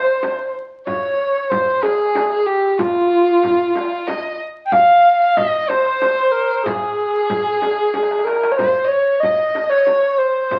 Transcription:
0.00 0.55 C5 medium
0.23 darbuka tek medium
0.23 frame drum medium
0.56 darbuka ka soft
0.85 1.51 C#5 loud
0.85 1.44 C#5 medium
0.85 frame drum medium
0.85 darbuka dum medium
1.04 darbuka ka soft
1.44 1.53 C#5 medium
1.50 1.84 C5 medium
1.50 1.85 C5 medium
1.50 frame drum medium
1.50 darbuka dum medium
1.82 2.48 G#4 loud
1.82 2.30 G#4 medium
1.82 darbuka tek medium
1.82 frame drum medium
2.15 darbuka tek medium
2.15 frame drum medium
2.30 2.47 G#4 medium
2.46 2.71 G4 medium
2.46 2.80 G4 medium
2.71 2.79 G4 medium
2.77 4.09 F4 medium
2.77 4.40 F4 medium
2.77 frame drum medium
2.77 darbuka dum medium
2.97 darbuka ka soft
3.43 frame drum medium
3.43 darbuka dum medium
3.75 darbuka tek medium
3.75 frame drum medium
4.07 4.40 D#5 medium
4.07 darbuka tek medium
4.07 frame drum medium
4.65 4.74 G5 medium
4.72 5.38 F5 loud
4.72 5.18 F5 medium
4.72 frame drum medium
4.72 darbuka dum medium
4.90 darbuka ka soft
5.22 5.39 F5 medium
5.37 5.70 D#5 loud
5.37 5.70 D#5 medium
5.37 frame drum medium
5.37 darbuka dum medium
5.68 6.33 C5 loud
5.68 6.68 C5 medium
5.68 darbuka tek medium
5.68 frame drum medium
6.02 darbuka tek medium
6.02 frame drum medium
6.32 6.63 A#4 medium
6.64 8.20 G#4 loud
6.64 8.29 G#4 medium
6.64 darbuka dum medium
6.64 frame drum medium
6.82 darbuka ka soft
6.98 darbuka ka soft
7.30 frame drum medium
7.30 darbuka dum medium
7.62 darbuka tek medium
7.62 frame drum medium
7.94 darbuka tek medium
7.94 frame drum medium
8.03 darbuka ka medium
8.11 darbuka tek medium
8.19 8.26 G#4 medium
8.19 darbuka ka medium
8.24 8.53 A#4 medium
8.24 8.59 A#4 medium
8.24 darbuka tek medium
8.36 darbuka ka medium
8.43 darbuka tek medium
8.52 8.58 C#5 medium
8.52 darbuka ka medium
8.57 8.89 C5 medium
8.57 8.86 C5 medium
8.57 frame drum medium
8.57 darbuka dum medium
8.76 darbuka ka soft
8.85 9.21 C#5 medium
8.85 8.93 D#5 soft
8.92 9.25 C#5 medium
9.20 9.69 D#5 medium
9.20 9.73 D#5 medium
9.20 frame drum medium
9.24 darbuka dum medium
9.55 darbuka tek medium
9.55 frame drum medium
9.70 10.19 C#5 loud
9.70 9.79 C#5 medium
9.77 9.86 D#5 medium
9.85 10.21 C#5 medium
9.85 darbuka tek medium
9.85 frame drum medium
10.18 10.59 C5 loud
10.18 10.59 C5 medium
10.51 frame drum medium
10.51 darbuka dum medium

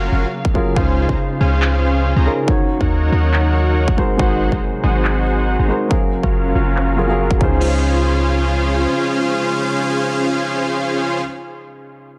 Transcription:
0.00 3.94 C#3 medium
0.00 0.54 F#3 medium
0.00 0.72 F#3 medium
0.00 0.75 A#3 medium
0.00 0.10 C#4 loud
0.00 0.54 C#4 medium
0.00 0.10 F4 medium
0.00 0.10 F#4 medium
0.00 0.10 G#4 medium
0.00 0.10 A#4 medium
0.00 0.11 A#4 medium
0.00 0.10 F5 loud
0.00 0.78 F5 medium
0.00 2.44 F5 medium
0.12 0.25 F#1 loud
0.12 0.27 C#4 medium
0.12 0.27 F4 medium
0.12 0.27 F#4 medium
0.12 0.27 A#4 medium
0.12 0.27 F5 medium
0.45 kick loud
0.54 0.73 F#3 medium
0.54 0.74 C#4 medium
0.54 0.74 F4 medium
0.54 0.74 G#4 medium
0.54 0.74 A#4 medium
0.54 kick medium
0.74 1.07 C#2 medium
0.74 1.80 C#3 medium
0.74 2.46 G#3 medium
0.74 1.80 C#4 medium
0.74 1.06 C#4 medium
0.74 1.81 D#4 medium
0.74 1.06 F4 medium
0.74 1.81 F4 medium
0.74 1.06 G#4 medium
0.74 2.46 C5 medium
0.74 1.06 C5 medium
0.74 1.06 F5 loud
0.74 kick loud
0.78 1.82 C5 medium
1.09 1.16 C#2 medium
1.09 1.18 C#4 medium
1.09 1.18 F4 medium
1.09 1.18 G#4 medium
1.09 1.18 C5 medium
1.09 1.18 A#5 medium
1.09 kick medium
1.41 2.14 C#2 medium
1.41 2.14 C#4 medium
1.41 2.13 F4 medium
1.41 2.13 G#4 medium
1.41 2.14 C5 medium
1.41 2.14 F5 medium
1.62 clap medium
2.16 2.28 C#2 medium
2.16 2.31 C#4 medium
2.16 2.31 F4 medium
2.16 2.31 G#4 medium
2.16 2.31 C5 medium
2.16 2.31 A#5 medium
2.25 2.45 C#3 medium
2.25 2.45 C#4 medium
2.25 2.45 D#4 medium
2.25 2.46 F4 medium
2.25 2.46 A#4 medium
2.46 3.52 D#3 medium
2.46 5.87 F#3 medium
2.46 3.96 A#3 medium
2.46 3.52 D#4 medium
2.46 5.87 D#4 medium
2.46 3.53 F#4 medium
2.46 3.54 C#5 medium
2.46 kick loud
2.81 3.10 D#2 medium
2.81 3.10 D#4 medium
2.81 3.10 F#4 medium
2.81 3.10 A#4 medium
2.81 3.10 C#5 medium
2.81 3.10 F#5 medium
2.81 kick medium
3.12 3.95 D#2 medium
3.12 3.97 D#4 loud
3.12 3.97 F#4 medium
3.12 3.97 A#4 medium
3.12 3.97 C#5 medium
3.12 3.97 F#5 loud
3.34 clap medium
3.88 kick medium
3.97 5.89 C3 medium
3.97 4.16 G#3 medium
3.97 5.89 G#3 medium
3.97 4.17 D#4 medium
3.97 4.17 F#4 medium
3.97 4.17 A#4 medium
3.97 4.17 C5 medium
3.97 kick medium
4.17 4.50 G#1 loud
4.17 5.23 G#3 medium
4.17 5.24 D#4 medium
4.17 4.49 D#4 medium
4.17 4.49 F#4 medium
4.17 5.24 F#4 medium
4.17 4.49 G#4 medium
4.17 5.25 A#4 medium
4.17 4.49 C5 medium
4.17 4.49 F#5 loud
4.17 kick loud
4.21 5.25 C5 medium
4.52 4.59 G#1 medium
4.52 4.61 D#4 medium
4.52 4.61 F#4 medium
4.52 4.61 G#4 medium
4.52 4.61 C5 medium
4.52 4.61 A#5 medium
4.52 kick medium
4.83 5.57 G#1 medium
4.83 5.56 D#4 medium
4.83 5.56 F#4 medium
4.83 5.56 G#4 medium
4.83 5.56 C5 medium
4.83 5.56 F#5 medium
5.05 clap medium
5.59 5.71 G#1 medium
5.59 5.74 D#4 medium
5.59 5.74 F#4 medium
5.59 5.74 G#4 medium
5.59 5.74 C5 medium
5.59 5.74 A#5 medium
5.68 5.88 G#3 medium
5.68 5.88 D#4 medium
5.68 5.88 F#4 medium
5.68 5.88 A#4 medium
5.68 5.89 C5 medium
5.89 7.39 C#3 medium
5.89 6.94 F#3 medium
5.89 7.39 F#3 medium
5.89 7.39 A#3 medium
5.89 6.95 C#4 medium
5.89 6.96 G#4 medium
5.89 6.95 F5 medium
5.89 7.39 F5 medium
5.89 kick loud
5.93 6.96 A#4 medium
6.23 6.53 F#1 medium
6.23 6.53 C#4 medium
6.23 6.53 F4 medium
6.23 6.53 F#4 medium
6.23 6.53 A#4 medium
6.23 6.53 F5 medium
6.23 kick medium
6.55 7.40 F#1 medium
6.55 7.40 C#4 medium
6.55 7.40 F4 medium
6.55 7.41 F#4 medium
6.55 7.41 A#4 medium
6.55 7.40 F5 loud
6.76 clap medium
6.97 7.06 F#3 medium
6.97 7.06 C#4 medium
6.97 7.06 F4 medium
6.97 7.07 G#4 medium
6.97 7.07 A#4 medium
7.07 7.40 F#3 medium
7.07 7.38 C#4 medium
7.07 7.41 G#4 medium
7.07 7.42 A#4 medium
7.07 7.41 F5 medium
7.31 kick medium
7.38 8.87 C#2 medium
7.38 11.18 C#3 medium
7.38 11.21 C#3 medium
7.38 11.21 G#3 medium
7.38 11.20 C#4 medium
7.38 11.21 C#4 medium
7.38 11.21 D#4 medium
7.38 11.21 F4 medium
7.38 11.21 G#4 medium
7.38 11.21 C5 medium
7.38 11.21 F5 medium
7.38 kick loud
7.38 crash medium
7.42 11.23 F4 medium
7.42 11.24 C5 medium

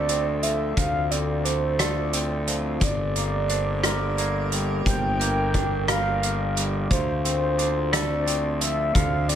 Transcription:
0.00 0.73 D2 soft
0.00 0.43 D3 soft
0.00 2.77 D3 medium
0.00 2.77 C4 medium
0.00 1.14 D4 soft
0.00 2.77 F4 medium
0.00 1.46 A4 soft
0.00 2.77 A4 medium
0.00 0.44 D5 medium
0.09 1.09 C4 soft
0.09 0.77 D5 medium
0.09 closed hi-hat soft
0.43 2.13 F3 soft
0.43 0.76 E5 medium
0.43 closed hi-hat soft
0.76 2.77 D2 medium
0.76 2.47 D3 soft
0.76 1.11 C5 medium
0.76 1.12 F5 medium
0.76 kick medium
0.76 closed hi-hat medium
1.11 2.12 C4 soft
1.11 1.79 A4 medium
1.11 1.46 D5 medium
1.11 closed hi-hat soft
1.44 3.50 D4 soft
1.44 1.81 C5 medium
1.44 closed hi-hat soft
1.79 2.82 A4 medium
1.79 2.47 C5 medium
1.79 2.56 D5 medium
1.79 cross-stick medium
1.79 closed hi-hat medium
2.13 2.82 C4 soft
2.13 closed hi-hat soft
2.47 2.81 F3 soft
2.47 2.82 C5 soft
2.47 closed hi-hat soft
2.80 4.82 G1 medium
2.80 4.52 G2 medium
2.80 9.35 D3 medium
2.80 6.86 A#3 medium
2.80 4.83 G4 medium
2.80 6.86 A#4 medium
2.80 3.49 D5 medium
2.80 3.80 D5 medium
2.80 kick medium
2.80 closed hi-hat medium
3.16 4.17 A#3 soft
3.16 closed hi-hat soft
3.48 5.55 D4 soft
3.48 4.17 C5 medium
3.48 closed hi-hat soft
3.83 5.54 A#4 medium
3.83 4.47 D5 medium
3.83 cross-stick medium
3.83 closed hi-hat medium
4.17 5.20 A#3 soft
4.17 4.86 D5 medium
4.17 closed hi-hat soft
4.52 6.23 G3 soft
4.52 closed hi-hat soft
4.84 6.86 G1 medium
4.84 6.56 G2 soft
4.84 9.35 F4 medium
4.84 5.20 C5 medium
4.84 5.84 G5 loud
4.84 kick medium
4.84 closed hi-hat medium
5.20 6.22 A#3 soft
5.20 5.88 A#4 medium
5.20 closed hi-hat soft
5.54 7.28 D4 soft
5.54 kick medium
5.54 closed hi-hat soft
5.87 6.91 A#4 medium
5.87 6.54 D5 medium
5.87 6.60 F5 loud
5.87 cross-stick medium
5.87 closed hi-hat medium
6.23 6.91 A#3 soft
6.23 closed hi-hat soft
6.56 6.91 G3 soft
6.56 6.90 D5 soft
6.56 closed hi-hat soft
6.90 8.91 D2 medium
6.90 8.61 D3 soft
6.90 9.35 C4 medium
6.90 9.35 A4 medium
6.90 7.22 C5 medium
6.90 7.59 F5 medium
6.90 kick medium
6.90 closed hi-hat medium
7.23 8.25 C4 soft
7.23 7.93 C5 medium
7.23 closed hi-hat soft
7.58 9.33 D4 soft
7.58 8.27 C5 soft
7.58 closed hi-hat soft
7.92 9.35 A4 medium
7.92 8.61 D5 medium
7.92 cross-stick medium
7.92 closed hi-hat medium
8.26 9.28 C4 soft
8.26 8.95 D5 medium
8.26 closed hi-hat soft
8.60 9.35 F3 soft
8.60 8.95 E5 medium
8.60 closed hi-hat soft
8.94 9.35 D2 medium
8.94 9.35 D3 medium
8.94 9.29 C5 medium
8.94 9.30 F5 loud
8.94 kick medium
8.94 closed hi-hat medium
9.28 9.35 C4 soft
9.28 9.35 A4 medium
9.28 9.35 D5 medium
9.28 closed hi-hat soft

